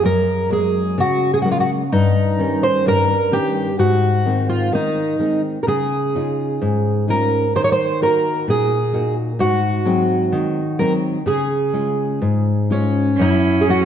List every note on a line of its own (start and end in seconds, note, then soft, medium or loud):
0.03 0.96 F#2 medium
0.03 0.52 A#4 medium
0.50 1.26 F#3 soft
0.50 1.26 G#3 soft
0.50 1.27 A#3 soft
0.50 0.96 G#4 medium
0.98 1.90 C#3 medium
0.98 1.32 F#4 medium
1.34 1.41 G#4 medium
1.42 1.82 F#3 soft
1.42 1.82 G#3 soft
1.42 1.83 A#3 soft
1.42 1.51 F#4 medium
1.51 1.60 F4 medium
1.60 1.69 F#4 medium
1.92 2.83 G2 medium
1.92 2.64 D#4 medium
2.39 3.13 D#3 soft
2.39 3.14 G3 soft
2.39 3.14 C#4 medium
2.63 2.87 C5 medium
2.86 3.76 G2 medium
2.86 3.35 A#4 medium
3.31 3.69 D#3 soft
3.31 3.69 G3 soft
3.31 3.69 C#4 soft
3.31 3.76 G4 medium
3.79 4.70 G#2 medium
3.79 4.49 F#4 medium
4.25 4.71 D#3 soft
4.25 5.01 G#3 soft
4.25 5.01 C4 medium
4.49 4.73 F4 medium
4.72 5.18 D#3 medium
4.72 5.41 D#4 medium
5.19 5.57 D#3 soft
5.19 5.58 G#3 soft
5.19 5.58 C4 soft
5.63 5.68 A#4 medium
5.67 6.59 C#3 medium
5.67 7.05 G#4 medium
6.15 6.90 C#4 soft
6.15 6.90 D#4 soft
6.15 6.90 F4 soft
6.62 7.52 G#2 medium
7.08 7.45 C#4 soft
7.08 7.46 D#4 soft
7.08 7.46 F4 soft
7.08 7.55 A#4 medium
7.55 8.45 D#3 medium
7.55 7.62 C5 medium
7.64 7.70 C#5 medium
7.72 8.02 C5 medium
8.01 8.75 A#3 soft
8.01 8.76 D#4 soft
8.01 8.76 F#4 medium
8.01 8.49 A#4 medium
8.48 9.37 A#2 medium
8.48 9.14 G#4 medium
8.93 9.30 A#3 soft
8.93 9.30 D#4 soft
8.93 9.31 F#4 medium
9.39 10.29 G#2 medium
9.39 10.79 F#4 medium
9.85 10.60 F#3 medium
9.85 10.61 G#3 soft
9.85 10.61 C4 medium
10.32 11.24 D#3 medium
10.79 11.17 F#3 soft
10.79 11.18 G#3 soft
10.79 11.18 C4 medium
10.79 10.92 A#4 medium
11.26 12.19 C#3 medium
11.26 12.67 G#4 medium
11.73 12.51 G#3 soft
11.73 12.51 C#4 soft
11.73 12.51 F4 medium
12.22 13.16 G#2 medium
12.70 13.09 G#3 soft
12.70 13.09 C#4 soft
12.70 13.21 C#4 medium
12.70 13.10 F4 soft
13.18 13.85 F#2 medium
13.18 13.85 C#4 medium
13.18 13.63 E4 medium
13.61 13.68 G#4 medium
13.68 13.85 F#3 soft
13.68 13.85 A3 soft
13.68 13.85 E4 medium
13.68 13.85 F#4 medium